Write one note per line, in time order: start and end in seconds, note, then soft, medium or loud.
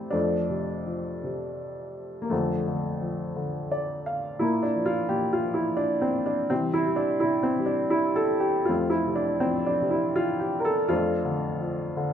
0.00 0.10 C3 medium
0.00 0.12 A3 soft
0.00 0.12 C4 soft
0.00 0.16 E4 medium
0.00 0.16 G4 soft
0.00 0.16 C5 medium
0.10 2.27 F2 soft
0.10 0.85 F3 soft
0.10 2.20 A3 soft
0.10 2.29 D4 medium
0.49 1.22 C3 soft
0.86 2.27 F3 soft
1.24 2.28 C3 soft
2.22 2.30 A#3 soft
2.30 4.38 F2 medium
2.30 2.66 D3 soft
2.30 3.00 F3 soft
2.30 4.02 A3 medium
2.67 3.35 D3 soft
3.01 4.38 F3 soft
3.36 4.38 D3 soft
3.72 4.04 D5 soft
4.06 4.39 F5 soft
4.39 5.09 A#2 medium
4.39 5.41 A#3 soft
4.39 4.65 E4 medium
4.63 4.88 D4 medium
4.76 5.43 F3 soft
4.86 5.10 F4 medium
5.09 6.46 A#2 soft
5.09 5.33 G4 medium
5.33 5.57 F4 medium
5.45 6.47 F3 soft
5.54 5.79 E4 medium
5.77 6.02 D4 medium
6.02 6.27 C4 medium
6.26 6.51 D4 medium
6.50 7.21 C3 medium
6.50 7.56 E3 soft
6.50 6.85 G3 soft
6.50 6.75 C4 medium
6.74 6.97 E4 medium
6.87 7.58 G3 soft
6.96 7.22 D4 medium
7.20 8.65 C3 soft
7.20 7.46 E4 medium
7.43 7.70 C4 medium
7.59 8.66 G3 soft
7.66 7.94 D4 medium
7.90 8.18 E4 medium
8.16 8.43 A4 medium
8.40 8.68 G4 medium
8.65 9.77 A3 soft
8.65 9.39 C4 soft
8.65 8.93 F4 medium
8.69 10.86 F2 soft
8.90 9.18 E4 medium
9.07 9.80 C3 soft
9.15 9.43 D4 medium
9.40 10.86 F3 soft
9.40 9.68 C4 medium
9.66 9.93 D4 medium
9.81 10.87 C3 soft
9.91 10.17 E4 medium
10.16 10.42 F4 medium
10.40 10.59 G4 medium
10.60 10.66 A#4 medium
10.65 10.90 A4 medium
10.89 12.13 F2 medium
10.89 12.13 A3 soft
10.89 12.13 D4 soft
10.89 12.13 F4 medium
11.25 11.95 D3 soft
11.61 12.13 F3 soft
11.97 12.13 D3 soft